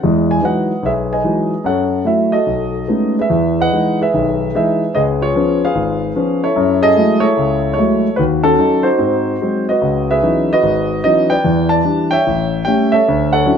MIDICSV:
0, 0, Header, 1, 2, 480
1, 0, Start_track
1, 0, Key_signature, 4, "major"
1, 0, Tempo, 410959
1, 29, Time_signature, 4, 2, 24, 8
1, 5310, Tempo, 405680
1, 15994, End_track
2, 0, Start_track
2, 0, Title_t, "Grand piano"
2, 0, Program_c, 0, 0
2, 38, Note_on_c, 0, 56, 59
2, 43, Note_on_c, 0, 40, 60
2, 360, Note_on_c, 0, 80, 80
2, 445, Note_off_c, 0, 56, 0
2, 448, Note_off_c, 0, 40, 0
2, 481, Note_on_c, 0, 52, 47
2, 492, Note_on_c, 0, 63, 50
2, 493, Note_on_c, 0, 56, 45
2, 494, Note_on_c, 0, 54, 44
2, 500, Note_off_c, 0, 80, 0
2, 512, Note_on_c, 0, 71, 50
2, 521, Note_on_c, 0, 75, 53
2, 526, Note_on_c, 0, 78, 69
2, 825, Note_off_c, 0, 52, 0
2, 830, Note_off_c, 0, 63, 0
2, 831, Note_off_c, 0, 54, 0
2, 831, Note_off_c, 0, 56, 0
2, 967, Note_on_c, 0, 35, 57
2, 983, Note_off_c, 0, 71, 0
2, 1001, Note_on_c, 0, 71, 50
2, 1002, Note_on_c, 0, 76, 72
2, 1003, Note_off_c, 0, 78, 0
2, 1006, Note_on_c, 0, 68, 51
2, 1070, Note_off_c, 0, 76, 0
2, 1300, Note_off_c, 0, 75, 0
2, 1307, Note_off_c, 0, 71, 0
2, 1316, Note_on_c, 0, 80, 72
2, 1318, Note_on_c, 0, 75, 53
2, 1325, Note_on_c, 0, 71, 52
2, 1384, Note_off_c, 0, 35, 0
2, 1445, Note_on_c, 0, 52, 45
2, 1448, Note_on_c, 0, 56, 41
2, 1453, Note_on_c, 0, 54, 45
2, 1453, Note_on_c, 0, 63, 50
2, 1748, Note_off_c, 0, 80, 0
2, 1782, Note_off_c, 0, 52, 0
2, 1784, Note_off_c, 0, 56, 0
2, 1786, Note_off_c, 0, 54, 0
2, 1787, Note_off_c, 0, 63, 0
2, 1896, Note_off_c, 0, 68, 0
2, 1897, Note_off_c, 0, 75, 0
2, 1900, Note_off_c, 0, 71, 0
2, 1921, Note_on_c, 0, 42, 62
2, 1940, Note_on_c, 0, 73, 54
2, 1940, Note_on_c, 0, 78, 73
2, 1949, Note_on_c, 0, 69, 53
2, 2338, Note_off_c, 0, 42, 0
2, 2388, Note_on_c, 0, 54, 44
2, 2394, Note_on_c, 0, 57, 41
2, 2403, Note_on_c, 0, 64, 52
2, 2415, Note_on_c, 0, 76, 62
2, 2426, Note_off_c, 0, 78, 0
2, 2703, Note_off_c, 0, 69, 0
2, 2713, Note_on_c, 0, 75, 76
2, 2720, Note_on_c, 0, 69, 47
2, 2723, Note_on_c, 0, 66, 46
2, 2733, Note_off_c, 0, 54, 0
2, 2736, Note_off_c, 0, 57, 0
2, 2740, Note_off_c, 0, 64, 0
2, 2740, Note_off_c, 0, 76, 0
2, 2845, Note_off_c, 0, 73, 0
2, 2880, Note_on_c, 0, 35, 49
2, 3309, Note_off_c, 0, 35, 0
2, 3364, Note_on_c, 0, 56, 43
2, 3365, Note_on_c, 0, 59, 38
2, 3367, Note_on_c, 0, 57, 40
2, 3368, Note_on_c, 0, 61, 37
2, 3372, Note_on_c, 0, 63, 49
2, 3655, Note_off_c, 0, 75, 0
2, 3659, Note_off_c, 0, 69, 0
2, 3660, Note_off_c, 0, 66, 0
2, 3717, Note_off_c, 0, 56, 0
2, 3718, Note_off_c, 0, 59, 0
2, 3719, Note_off_c, 0, 57, 0
2, 3719, Note_off_c, 0, 61, 0
2, 3721, Note_off_c, 0, 63, 0
2, 3725, Note_on_c, 0, 68, 41
2, 3725, Note_on_c, 0, 71, 47
2, 3755, Note_on_c, 0, 76, 73
2, 3853, Note_on_c, 0, 40, 60
2, 4182, Note_off_c, 0, 76, 0
2, 4198, Note_off_c, 0, 71, 0
2, 4210, Note_on_c, 0, 75, 59
2, 4215, Note_on_c, 0, 71, 56
2, 4223, Note_on_c, 0, 78, 91
2, 4279, Note_off_c, 0, 40, 0
2, 4347, Note_on_c, 0, 52, 48
2, 4356, Note_on_c, 0, 56, 46
2, 4360, Note_on_c, 0, 63, 49
2, 4634, Note_off_c, 0, 68, 0
2, 4656, Note_off_c, 0, 78, 0
2, 4673, Note_off_c, 0, 71, 0
2, 4687, Note_off_c, 0, 52, 0
2, 4690, Note_on_c, 0, 68, 55
2, 4691, Note_off_c, 0, 56, 0
2, 4691, Note_on_c, 0, 71, 54
2, 4693, Note_off_c, 0, 63, 0
2, 4702, Note_on_c, 0, 76, 75
2, 4834, Note_on_c, 0, 51, 60
2, 4836, Note_on_c, 0, 35, 57
2, 5113, Note_off_c, 0, 75, 0
2, 5247, Note_off_c, 0, 51, 0
2, 5248, Note_off_c, 0, 35, 0
2, 5294, Note_off_c, 0, 71, 0
2, 5301, Note_off_c, 0, 68, 0
2, 5312, Note_off_c, 0, 76, 0
2, 5312, Note_on_c, 0, 71, 54
2, 5317, Note_on_c, 0, 52, 45
2, 5317, Note_on_c, 0, 56, 45
2, 5319, Note_on_c, 0, 68, 56
2, 5324, Note_on_c, 0, 63, 55
2, 5330, Note_on_c, 0, 76, 70
2, 5648, Note_off_c, 0, 52, 0
2, 5648, Note_off_c, 0, 56, 0
2, 5652, Note_off_c, 0, 63, 0
2, 5755, Note_off_c, 0, 71, 0
2, 5759, Note_off_c, 0, 68, 0
2, 5765, Note_off_c, 0, 76, 0
2, 5778, Note_on_c, 0, 71, 57
2, 5783, Note_on_c, 0, 75, 79
2, 5788, Note_on_c, 0, 37, 63
2, 5790, Note_on_c, 0, 68, 57
2, 5855, Note_off_c, 0, 75, 0
2, 6096, Note_off_c, 0, 68, 0
2, 6102, Note_on_c, 0, 65, 59
2, 6112, Note_on_c, 0, 73, 84
2, 6114, Note_on_c, 0, 68, 55
2, 6202, Note_off_c, 0, 37, 0
2, 6266, Note_on_c, 0, 53, 52
2, 6276, Note_on_c, 0, 61, 56
2, 6277, Note_on_c, 0, 59, 45
2, 6592, Note_off_c, 0, 71, 0
2, 6602, Note_off_c, 0, 53, 0
2, 6603, Note_off_c, 0, 68, 0
2, 6603, Note_off_c, 0, 73, 0
2, 6606, Note_off_c, 0, 61, 0
2, 6607, Note_off_c, 0, 59, 0
2, 6610, Note_on_c, 0, 71, 58
2, 6612, Note_on_c, 0, 77, 86
2, 6620, Note_on_c, 0, 68, 62
2, 6733, Note_on_c, 0, 32, 58
2, 7012, Note_off_c, 0, 65, 0
2, 7149, Note_off_c, 0, 32, 0
2, 7216, Note_on_c, 0, 53, 51
2, 7223, Note_on_c, 0, 61, 54
2, 7225, Note_on_c, 0, 59, 45
2, 7497, Note_off_c, 0, 71, 0
2, 7502, Note_off_c, 0, 68, 0
2, 7547, Note_off_c, 0, 53, 0
2, 7547, Note_on_c, 0, 73, 81
2, 7550, Note_off_c, 0, 61, 0
2, 7551, Note_on_c, 0, 69, 55
2, 7552, Note_off_c, 0, 59, 0
2, 7554, Note_on_c, 0, 64, 57
2, 7573, Note_off_c, 0, 77, 0
2, 7693, Note_on_c, 0, 42, 72
2, 7983, Note_off_c, 0, 73, 0
2, 7993, Note_off_c, 0, 69, 0
2, 8005, Note_on_c, 0, 68, 69
2, 8008, Note_on_c, 0, 75, 104
2, 8011, Note_on_c, 0, 69, 65
2, 8106, Note_off_c, 0, 42, 0
2, 8159, Note_off_c, 0, 64, 0
2, 8173, Note_on_c, 0, 56, 48
2, 8176, Note_on_c, 0, 54, 52
2, 8176, Note_on_c, 0, 64, 55
2, 8181, Note_on_c, 0, 57, 48
2, 8446, Note_off_c, 0, 69, 0
2, 8452, Note_off_c, 0, 64, 0
2, 8453, Note_on_c, 0, 73, 96
2, 8463, Note_on_c, 0, 69, 62
2, 8470, Note_on_c, 0, 64, 62
2, 8498, Note_off_c, 0, 75, 0
2, 8503, Note_off_c, 0, 56, 0
2, 8505, Note_off_c, 0, 54, 0
2, 8507, Note_off_c, 0, 57, 0
2, 8654, Note_on_c, 0, 37, 60
2, 8912, Note_off_c, 0, 68, 0
2, 9059, Note_off_c, 0, 73, 0
2, 9063, Note_off_c, 0, 37, 0
2, 9080, Note_off_c, 0, 69, 0
2, 9084, Note_off_c, 0, 64, 0
2, 9084, Note_on_c, 0, 73, 77
2, 9097, Note_on_c, 0, 69, 54
2, 9102, Note_on_c, 0, 64, 54
2, 9126, Note_off_c, 0, 64, 0
2, 9137, Note_on_c, 0, 57, 45
2, 9138, Note_on_c, 0, 54, 50
2, 9138, Note_on_c, 0, 56, 46
2, 9144, Note_on_c, 0, 64, 51
2, 9465, Note_off_c, 0, 57, 0
2, 9466, Note_off_c, 0, 54, 0
2, 9466, Note_off_c, 0, 56, 0
2, 9469, Note_off_c, 0, 64, 0
2, 9556, Note_off_c, 0, 69, 0
2, 9588, Note_on_c, 0, 71, 79
2, 9599, Note_off_c, 0, 73, 0
2, 9603, Note_on_c, 0, 66, 56
2, 9622, Note_on_c, 0, 39, 66
2, 9662, Note_off_c, 0, 71, 0
2, 9903, Note_off_c, 0, 66, 0
2, 9911, Note_on_c, 0, 69, 97
2, 9915, Note_on_c, 0, 61, 58
2, 9921, Note_on_c, 0, 66, 59
2, 10031, Note_off_c, 0, 39, 0
2, 10075, Note_off_c, 0, 61, 0
2, 10090, Note_on_c, 0, 54, 45
2, 10093, Note_on_c, 0, 61, 47
2, 10097, Note_on_c, 0, 63, 51
2, 10369, Note_off_c, 0, 66, 0
2, 10376, Note_off_c, 0, 63, 0
2, 10379, Note_on_c, 0, 72, 85
2, 10387, Note_on_c, 0, 66, 60
2, 10393, Note_on_c, 0, 63, 58
2, 10414, Note_off_c, 0, 69, 0
2, 10425, Note_off_c, 0, 54, 0
2, 10426, Note_off_c, 0, 61, 0
2, 10562, Note_on_c, 0, 60, 61
2, 10567, Note_on_c, 0, 44, 57
2, 10991, Note_off_c, 0, 60, 0
2, 10994, Note_off_c, 0, 44, 0
2, 11068, Note_on_c, 0, 54, 42
2, 11072, Note_on_c, 0, 56, 42
2, 11081, Note_on_c, 0, 60, 49
2, 11329, Note_off_c, 0, 72, 0
2, 11332, Note_off_c, 0, 66, 0
2, 11336, Note_off_c, 0, 63, 0
2, 11394, Note_on_c, 0, 75, 75
2, 11409, Note_off_c, 0, 54, 0
2, 11411, Note_off_c, 0, 56, 0
2, 11412, Note_on_c, 0, 71, 53
2, 11416, Note_off_c, 0, 60, 0
2, 11417, Note_on_c, 0, 66, 51
2, 11545, Note_on_c, 0, 37, 65
2, 11875, Note_off_c, 0, 71, 0
2, 11889, Note_on_c, 0, 76, 82
2, 11893, Note_on_c, 0, 71, 66
2, 11897, Note_off_c, 0, 75, 0
2, 11903, Note_on_c, 0, 68, 62
2, 11973, Note_off_c, 0, 37, 0
2, 12026, Note_on_c, 0, 54, 46
2, 12029, Note_on_c, 0, 52, 48
2, 12030, Note_on_c, 0, 61, 45
2, 12031, Note_on_c, 0, 59, 45
2, 12040, Note_on_c, 0, 63, 57
2, 12332, Note_off_c, 0, 66, 0
2, 12374, Note_off_c, 0, 54, 0
2, 12375, Note_off_c, 0, 52, 0
2, 12376, Note_off_c, 0, 59, 0
2, 12376, Note_off_c, 0, 61, 0
2, 12379, Note_off_c, 0, 71, 0
2, 12380, Note_off_c, 0, 63, 0
2, 12385, Note_off_c, 0, 76, 0
2, 12386, Note_on_c, 0, 75, 88
2, 12397, Note_on_c, 0, 71, 61
2, 12400, Note_on_c, 0, 66, 60
2, 12505, Note_on_c, 0, 32, 59
2, 12809, Note_off_c, 0, 68, 0
2, 12929, Note_off_c, 0, 32, 0
2, 12975, Note_off_c, 0, 75, 0
2, 12993, Note_on_c, 0, 75, 91
2, 12995, Note_on_c, 0, 59, 45
2, 13001, Note_on_c, 0, 54, 46
2, 13003, Note_on_c, 0, 52, 49
2, 13003, Note_on_c, 0, 61, 45
2, 13012, Note_on_c, 0, 63, 57
2, 13287, Note_off_c, 0, 71, 0
2, 13292, Note_off_c, 0, 66, 0
2, 13294, Note_off_c, 0, 75, 0
2, 13299, Note_on_c, 0, 79, 93
2, 13305, Note_on_c, 0, 71, 61
2, 13322, Note_on_c, 0, 74, 62
2, 13333, Note_off_c, 0, 59, 0
2, 13336, Note_off_c, 0, 54, 0
2, 13337, Note_off_c, 0, 52, 0
2, 13337, Note_off_c, 0, 61, 0
2, 13342, Note_off_c, 0, 63, 0
2, 13473, Note_on_c, 0, 40, 62
2, 13751, Note_off_c, 0, 79, 0
2, 13766, Note_on_c, 0, 81, 96
2, 13770, Note_off_c, 0, 74, 0
2, 13788, Note_on_c, 0, 74, 66
2, 13890, Note_off_c, 0, 40, 0
2, 13942, Note_on_c, 0, 52, 47
2, 13949, Note_on_c, 0, 55, 46
2, 13956, Note_on_c, 0, 62, 55
2, 14221, Note_off_c, 0, 71, 0
2, 14256, Note_on_c, 0, 79, 97
2, 14270, Note_on_c, 0, 73, 71
2, 14276, Note_off_c, 0, 81, 0
2, 14283, Note_on_c, 0, 76, 72
2, 14286, Note_off_c, 0, 52, 0
2, 14289, Note_off_c, 0, 55, 0
2, 14293, Note_off_c, 0, 62, 0
2, 14387, Note_off_c, 0, 74, 0
2, 14446, Note_on_c, 0, 33, 61
2, 14857, Note_off_c, 0, 33, 0
2, 14859, Note_off_c, 0, 79, 0
2, 14895, Note_on_c, 0, 79, 88
2, 14914, Note_on_c, 0, 55, 51
2, 14924, Note_on_c, 0, 57, 45
2, 14929, Note_on_c, 0, 61, 54
2, 15182, Note_off_c, 0, 73, 0
2, 15189, Note_off_c, 0, 76, 0
2, 15217, Note_on_c, 0, 76, 91
2, 15232, Note_on_c, 0, 73, 60
2, 15233, Note_off_c, 0, 79, 0
2, 15244, Note_on_c, 0, 69, 61
2, 15249, Note_off_c, 0, 55, 0
2, 15254, Note_off_c, 0, 57, 0
2, 15256, Note_off_c, 0, 61, 0
2, 15412, Note_on_c, 0, 38, 70
2, 15668, Note_off_c, 0, 76, 0
2, 15689, Note_off_c, 0, 73, 0
2, 15691, Note_off_c, 0, 69, 0
2, 15698, Note_on_c, 0, 78, 96
2, 15707, Note_on_c, 0, 73, 68
2, 15709, Note_on_c, 0, 69, 67
2, 15818, Note_off_c, 0, 38, 0
2, 15848, Note_on_c, 0, 54, 53
2, 15856, Note_on_c, 0, 62, 48
2, 15858, Note_on_c, 0, 61, 51
2, 15865, Note_on_c, 0, 64, 55
2, 15994, Note_off_c, 0, 54, 0
2, 15994, Note_off_c, 0, 61, 0
2, 15994, Note_off_c, 0, 62, 0
2, 15994, Note_off_c, 0, 64, 0
2, 15994, Note_off_c, 0, 69, 0
2, 15994, Note_off_c, 0, 73, 0
2, 15994, Note_off_c, 0, 78, 0
2, 15994, End_track
0, 0, End_of_file